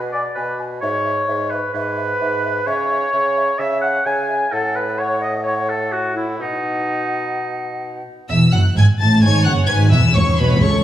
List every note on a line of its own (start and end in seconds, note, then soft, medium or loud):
0.00 0.31 B2 medium
0.00 0.13 B4 medium
0.12 0.23 D5 medium
0.12 0.38 D5 medium
0.12 0.20 G#5 soft
0.35 0.77 B2 medium
0.35 0.58 B4 medium
0.35 0.60 B4 medium
0.35 0.43 G#5 soft
0.59 0.65 G#5 soft
0.81 1.23 G#2 medium
0.81 1.52 C#5 loud
0.81 1.54 C#5 medium
0.81 0.88 E5 medium
1.05 1.11 E5 medium
1.28 1.62 G#2 medium
1.28 1.34 E5 medium
1.51 1.73 B4 medium
1.51 1.75 B4 medium
1.51 1.58 E5 soft
1.74 2.15 G#2 medium
1.74 2.69 B4 medium
1.74 1.82 E5 medium
1.97 2.03 E5 medium
2.20 2.61 G#2 medium
2.20 2.28 E5 medium
2.45 2.51 E5 medium
2.66 3.07 C#3 medium
2.66 3.60 C#5 loud
2.66 3.63 C#5 medium
2.66 2.73 E5 medium
2.91 2.97 E5 medium
3.13 3.54 C#3 medium
3.13 3.19 E5 medium
3.37 3.43 E5 medium
3.59 4.00 C#3 medium
3.59 3.80 E5 medium
3.59 3.66 E5 medium
3.59 3.83 E5 medium
3.81 3.90 E5 medium
3.81 4.07 F#5 medium
3.81 4.06 F#5 medium
4.06 4.47 C#3 medium
4.06 4.12 E5 medium
4.06 4.54 G#5 medium
4.06 4.52 G#5 medium
4.29 4.35 E5 medium
4.52 6.36 A2 medium
4.52 4.77 A4 medium
4.52 4.63 A4 medium
4.52 4.78 F#5 medium
4.75 5.01 B4 medium
4.75 4.87 B4 medium
4.99 5.21 C#5 medium
4.99 5.22 C#5 medium
4.99 5.44 F#5 medium
5.21 5.43 D#5 medium
5.21 5.33 D#5 medium
5.44 5.55 C#5 medium
5.44 5.71 C#5 medium
5.44 5.92 F#5 medium
5.68 5.94 A4 medium
5.92 6.16 F#4 medium
5.92 6.15 F#4 medium
5.92 6.39 F#5 medium
6.15 6.26 E4 medium
6.15 6.42 E4 medium
6.39 8.03 B2 medium
6.39 8.03 D#4 medium
6.39 8.07 D#4 medium
6.39 8.02 F#5 medium
8.29 8.51 E1 medium
8.29 8.51 E2 medium
8.29 8.37 E5 medium
8.29 8.52 E6 medium
8.52 8.61 F#1 medium
8.52 8.61 F#2 medium
8.52 8.61 F#5 medium
8.52 8.76 F#6 medium
8.76 8.84 G#1 medium
8.76 8.84 G#2 medium
8.76 8.85 G#5 medium
8.76 8.85 G#6 medium
8.99 9.22 A1 medium
8.99 9.23 A2 medium
8.99 9.23 A5 medium
8.99 9.23 A6 medium
9.22 9.46 G#1 medium
9.22 9.46 G#2 medium
9.22 9.66 C#5 medium
9.22 9.45 G#5 medium
9.22 9.45 G#6 medium
9.43 9.69 F#1 medium
9.43 9.70 F#2 medium
9.43 9.70 F#5 medium
9.43 9.51 F#6 medium
9.67 9.91 G#1 medium
9.67 9.92 G#2 medium
9.67 10.15 B4 medium
9.67 9.92 G#5 medium
9.67 9.75 G#6 loud
9.91 10.15 E1 medium
9.91 10.15 E2 medium
9.91 10.00 E5 medium
9.91 10.14 E6 medium
10.13 10.22 C#2 medium
10.13 10.23 C#2 medium
10.13 10.81 E2 loud
10.13 10.62 C#5 medium
10.13 10.24 C#5 medium
10.13 10.37 C#6 loud
10.37 10.61 B1 medium
10.37 10.61 B2 medium
10.37 10.61 B4 medium
10.37 10.61 B5 medium
10.61 10.84 C#2 medium
10.61 10.84 A4 medium
10.61 10.84 C#5 medium
10.61 10.84 C#6 loud